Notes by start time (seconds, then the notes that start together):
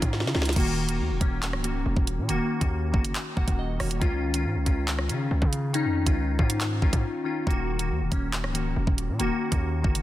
Already playing: D#3 C#4 D#4 F4
0.02 G#2, kick, closed hi-hat
0.13 snare
0.20 C#3, snare
0.27 snare
0.34 C#2 D#3 C#4 F4, snare
0.42 snare, closed hi-hat
0.49 snare, closed hi-hat
0.56 D#1 D#3 A#3 F#4, kick, closed hi-hat, crash
0.60 closed hi-hat
0.88 D#3 A#3 F#4, closed hi-hat
0.99 D#2
1.10 D#1
1.20 D#1 D#3 A#3 C#4, kick, closed hi-hat
1.43 clap, closed hi-hat
1.53 C#1, cross-stick
1.63 D#3 A#3 F#4, closed hi-hat
1.86 D#1
1.97 D#1, kick
2.07 closed hi-hat
2.18 A#2
2.28 D#1 D#3 A#3 F#4, closed hi-hat
2.60 D#2 D#3 A#3 F#4, kick, closed hi-hat
2.92 F#1 D#3 A#3 F#4, kick
3.05 closed hi-hat
3.15 clap, closed hi-hat
3.36 D#1 D#3 A#3 F#4 F#5, kick
3.48 D#1, kick, closed hi-hat
3.59 D#5
3.79 D#1 D#3 A#3 F#4 C#5, cross-stick, open hi-hat
3.91 closed hi-hat
4.00 C#2 D#3 C#4 F4, kick, closed hi-hat
4.34 D#3 C#4 F4, closed hi-hat
4.45 G#2
4.56 C#2
4.65 C#2 D#3 C#4 F4, kick, closed hi-hat
4.88 clap, closed hi-hat
4.99 cross-stick
5.08 C#3 D#3 C#4 F4, closed hi-hat
5.31 C#2
5.42 C#3, kick
5.53 closed hi-hat
5.73 D#3 C#4 D#4, closed hi-hat
5.85 F2
6.06 C#2 D#3 C#4 F4, kick, closed hi-hat
6.38 G#2 D#3 C#4 F4, kick
6.50 closed hi-hat
6.61 clap, closed hi-hat
6.82 C#2 D#3 C#4 F4, kick
6.93 G#2, kick, closed hi-hat
7.24 D#3 C#4 F4
7.47 D#1 D#3 A#3 F#4, kick, closed hi-hat
7.79 D#3 A#3 F#4, closed hi-hat
7.90 D#2
8.01 D#1
8.11 D#1 D#3 A#3 C#4, kick, closed hi-hat
8.33 clap, closed hi-hat
8.44 C#1, cross-stick
8.54 D#3 A#3 F#4, closed hi-hat
8.76 D#1
8.87 D#1, kick
8.98 closed hi-hat
9.09 A#2
9.19 D#1 D#3 A#3 F#4, closed hi-hat
9.51 D#2 D#3 A#3 F#4, kick, closed hi-hat
9.82 F#1 D#3 A#3 F#4, kick
9.95 closed hi-hat